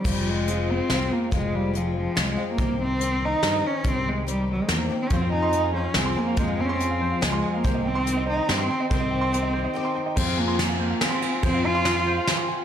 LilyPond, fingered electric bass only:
\new Staff \with { instrumentName = "Fingered electric bass" } { \clef bass \time 3/4 \key f \minor \tempo 4 = 142 f,,2 c,8 r8 | f,,2 c,8 r8 | c,2 g,8 r8 | c,2 e,8 r8 |
f,2 c,8 r8 | f,2 des,8 r8 | c,2 g,8 r8 | c,2 r4 |
f,2 r4 | f,2 r4 | }